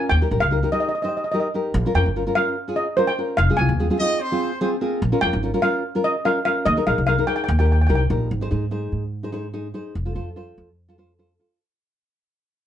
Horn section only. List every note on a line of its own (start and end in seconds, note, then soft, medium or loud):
3.99 4.19 D#4 loud
3.99 4.19 D#5 loud
4.20 4.60 C4 loud
4.20 4.60 C5 loud
4.61 4.70 C4 medium
4.61 4.70 C5 medium
4.81 5.11 A#3 medium
4.81 5.11 A#4 medium